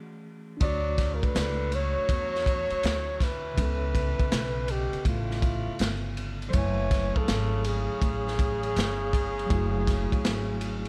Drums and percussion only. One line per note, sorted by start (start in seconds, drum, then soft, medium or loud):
0.61 kick loud
0.61 ride medium
0.98 kick medium
0.98 snare soft
0.98 ride medium
1.23 kick medium
1.23 ride soft
1.36 snare loud
1.36 hi-hat pedal medium
1.36 ride medium
1.72 ride medium
2.09 kick medium
2.09 ride medium
2.35 snare soft
2.46 kick medium
2.46 ride medium
2.70 ride soft
2.83 snare loud
2.83 hi-hat pedal soft
2.83 ride medium
3.20 kick medium
3.20 snare soft
3.20 ride medium
3.58 kick loud
3.58 ride medium
3.95 kick medium
3.95 ride medium
4.20 kick medium
4.20 ride soft
4.32 snare loud
4.32 hi-hat pedal medium
4.32 ride medium
4.68 ride medium
4.93 ride soft
5.05 kick medium
5.05 ride medium
5.31 snare soft
5.42 kick medium
5.42 ride medium
5.79 snare loud
5.79 hi-hat pedal soft
5.79 ride medium
6.17 ride medium
6.42 ride soft
6.53 kick loud
6.53 ride medium
6.91 kick medium
6.91 snare soft
6.91 ride medium
7.16 kick medium
7.28 snare loud
7.28 hi-hat pedal medium
7.28 ride medium
7.64 ride medium
8.02 kick medium
8.02 ride medium
8.28 snare soft
8.39 kick medium
8.39 ride medium
8.63 ride soft
8.76 snare medium
8.76 hi-hat pedal soft
8.76 ride medium
9.13 kick medium
9.13 ride medium
9.39 ride soft
9.50 kick loud
9.50 ride medium
9.87 kick loud
9.87 snare soft
9.87 ride medium
10.12 kick medium
10.12 ride soft
10.25 snare loud
10.25 hi-hat pedal soft
10.25 ride medium
10.61 ride medium
10.85 ride soft